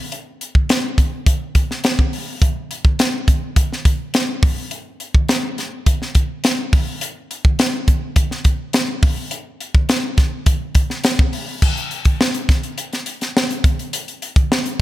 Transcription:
0.12 closed hi-hat
0.41 closed hi-hat
0.55 kick
0.69 snare, closed hi-hat
0.98 kick, closed hi-hat
1.26 kick, closed hi-hat
1.55 kick, closed hi-hat
1.71 snare
1.84 snare, closed hi-hat
1.99 kick
2.13 open hi-hat
2.42 kick, closed hi-hat
2.71 closed hi-hat
2.85 kick
2.99 snare, closed hi-hat
3.28 kick, closed hi-hat
3.56 kick, closed hi-hat
3.73 snare
3.85 kick, closed hi-hat
4.14 snare, closed hi-hat
4.43 kick, open hi-hat
4.71 closed hi-hat
5.00 closed hi-hat
5.15 kick
5.29 snare, closed hi-hat
5.58 snare, closed hi-hat
5.86 kick, closed hi-hat
6.02 snare
6.15 kick, closed hi-hat
6.44 snare, closed hi-hat
6.73 kick, open hi-hat
7.01 closed hi-hat
7.31 closed hi-hat
7.45 kick
7.59 snare, closed hi-hat
7.88 kick, closed hi-hat
8.16 kick, closed hi-hat
8.31 snare
8.44 kick, closed hi-hat
8.73 snare, closed hi-hat
9.02 kick, open hi-hat
9.31 closed hi-hat
9.60 closed hi-hat
9.75 kick
9.89 snare, closed hi-hat
10.18 kick, snare, closed hi-hat
10.46 kick, closed hi-hat
10.75 kick, closed hi-hat
10.90 snare
11.04 snare, closed hi-hat
11.19 kick
11.33 open hi-hat
11.62 kick, crash
11.77 closed hi-hat
11.91 closed hi-hat
12.05 kick, closed hi-hat
12.21 snare
12.34 closed hi-hat
12.49 kick, snare, closed hi-hat
12.63 closed hi-hat
12.78 closed hi-hat
12.93 snare, closed hi-hat
13.06 closed hi-hat
13.21 snare, closed hi-hat
13.37 snare
13.51 closed hi-hat
13.64 kick, closed hi-hat
13.79 closed hi-hat
13.93 closed hi-hat
14.08 closed hi-hat
14.22 closed hi-hat
14.36 kick, closed hi-hat
14.52 snare
14.66 closed hi-hat

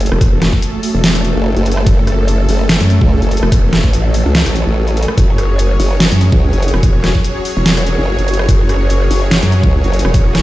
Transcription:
Already playing: F#3 A3 C#4 F#4 G#4 A4, sub drop
0.00 closed hi-hat
0.06 closed hi-hat
0.12 E1, cross-stick
0.21 kick, closed hi-hat
0.42 cross-stick, snare, closed hi-hat
0.53 kick
0.62 closed hi-hat
0.83 open hi-hat
0.94 E1
1.04 snare, closed hi-hat
1.15 cross-stick, closed hi-hat
1.25 closed hi-hat
1.36 F#1
1.57 F#1, closed hi-hat
1.66 closed hi-hat
1.72 closed hi-hat
1.77 cross-stick
1.87 F#1, kick, closed hi-hat
2.07 cross-stick, closed hi-hat
2.28 closed hi-hat
2.49 F#1, open hi-hat
2.69 snare, closed hi-hat
2.81 F#2, closed hi-hat
2.90 closed hi-hat
3.01 C#2, kick
3.22 F#1, closed hi-hat
3.31 closed hi-hat
3.37 closed hi-hat
3.43 E1, cross-stick
3.52 kick, closed hi-hat
3.73 cross-stick, snare, closed hi-hat
3.84 A1, kick
3.93 closed hi-hat
4.14 open hi-hat
4.25 C#2
4.35 snare, closed hi-hat
4.46 A1, cross-stick, closed hi-hat
4.56 closed hi-hat
4.67 A1
4.88 closed hi-hat
4.97 closed hi-hat
5.03 closed hi-hat
5.08 cross-stick
5.18 F#1 C#5, kick, closed hi-hat
5.38 cross-stick, closed hi-hat
5.47 C#5
5.59 closed hi-hat
5.80 F#1, open hi-hat
6.00 snare, closed hi-hat
6.12 F#2, closed hi-hat
6.21 closed hi-hat
6.32 C#2, kick
6.53 F#1, closed hi-hat
6.62 closed hi-hat
6.68 closed hi-hat
6.74 E1, cross-stick
6.83 kick, closed hi-hat
7.04 cross-stick, snare, closed hi-hat
7.15 kick
7.24 closed hi-hat
7.45 open hi-hat
7.57 E1
7.66 snare, closed hi-hat
7.77 cross-stick, closed hi-hat
7.87 closed hi-hat
7.98 F#1
8.19 F#1, closed hi-hat
8.28 closed hi-hat
8.34 closed hi-hat
8.39 cross-stick
8.49 F#1, kick, closed hi-hat
8.69 cross-stick, closed hi-hat
8.90 closed hi-hat
9.11 F#1, open hi-hat
9.31 snare, closed hi-hat
9.43 F#2, closed hi-hat
9.52 closed hi-hat
9.63 C#2, kick
9.84 F#1, closed hi-hat
9.93 closed hi-hat
9.99 closed hi-hat
10.05 E1, cross-stick
10.14 kick, closed hi-hat, noise sweep
10.35 cross-stick, snare, closed hi-hat

